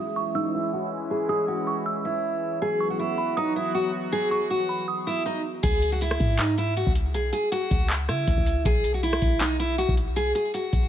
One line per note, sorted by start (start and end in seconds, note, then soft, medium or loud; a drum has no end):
0.00 5.59 E3 medium
0.00 2.58 G#3 medium
0.00 2.58 C#4 medium
0.00 0.33 E4 medium
0.00 2.58 E4 medium
0.00 0.14 D#6 medium
0.16 0.34 C#6 medium
0.35 0.50 D#4 medium
0.35 1.07 E6 medium
0.54 0.69 E4 medium
0.73 0.88 F#4 medium
1.11 1.26 G#4 medium
1.29 1.44 G#4 medium
1.29 1.65 D#6 medium
1.48 1.84 F#4 medium
1.67 1.85 C#6 medium
1.86 2.57 E6 medium
2.05 2.58 E4 medium
2.61 5.60 F#3 medium
2.61 5.60 B3 medium
2.61 5.60 F#4 medium
2.61 2.89 G#4 loud
2.80 3.16 C#6 medium
2.90 2.97 F#4 medium
2.99 3.35 E4 medium
3.18 3.36 B5 medium
3.37 3.52 D#4 medium
3.37 4.08 D#6 medium
3.56 3.71 E4 medium
3.75 3.90 F#4 medium
4.12 4.28 G#4 loud
4.31 4.47 G#4 medium
4.31 4.67 C#6 medium
4.50 4.86 F#4 medium
4.69 4.87 B5 medium
4.88 5.23 D#6 medium
5.07 5.22 E4 medium
5.26 5.41 D#4 medium
5.63 6.18 C#2 loud
5.63 5.90 G#4 loud
5.63 kick loud
5.63 closed hi-hat medium
5.63 crash medium
5.82 closed hi-hat medium
5.92 5.99 F#4 medium
6.01 6.37 E4 medium
6.01 closed hi-hat medium
6.11 cross-stick medium
6.20 6.84 G#2 loud
6.20 kick medium
6.20 closed hi-hat medium
6.38 6.54 D#4 medium
6.38 clap loud
6.38 closed hi-hat loud
6.58 6.73 E4 medium
6.58 closed hi-hat medium
6.77 6.92 F#4 medium
6.77 closed hi-hat medium
6.87 7.16 C#2 loud
6.87 kick loud
6.95 closed hi-hat medium
7.14 7.32 B1 loud
7.14 7.30 G#4 medium
7.14 closed hi-hat medium
7.33 7.48 G#4 medium
7.33 closed hi-hat medium
7.52 7.87 F#4 medium
7.52 closed hi-hat medium
7.71 8.10 C#2 loud
7.71 kick medium
7.71 closed hi-hat medium
7.90 clap loud
7.90 closed hi-hat loud
8.09 8.27 C#3 loud
8.09 8.62 E4 medium
8.09 cross-stick medium
8.09 closed hi-hat medium
8.28 8.37 C#2 loud
8.28 kick loud
8.28 closed hi-hat medium
8.38 8.64 C#2 loud
8.38 kick loud
8.46 closed hi-hat medium
8.65 9.20 B1 loud
8.65 8.93 G#4 loud
8.65 kick loud
8.65 closed hi-hat medium
8.84 closed hi-hat medium
8.94 9.01 F#4 medium
9.03 9.39 E4 medium
9.03 closed hi-hat medium
9.13 cross-stick loud
9.22 9.86 B1 loud
9.22 kick loud
9.22 closed hi-hat medium
9.41 9.56 D#4 medium
9.41 clap loud
9.41 closed hi-hat medium
9.60 9.75 E4 medium
9.60 closed hi-hat medium
9.78 9.94 F#4 medium
9.78 closed hi-hat medium
9.89 10.33 B1 loud
9.89 kick medium
9.97 closed hi-hat medium
10.16 10.31 G#4 loud
10.16 closed hi-hat medium
10.35 10.50 G#4 medium
10.35 closed hi-hat medium
10.54 10.88 F#4 medium
10.54 closed hi-hat medium
10.73 10.88 B1 loud
10.73 kick medium
10.73 closed hi-hat medium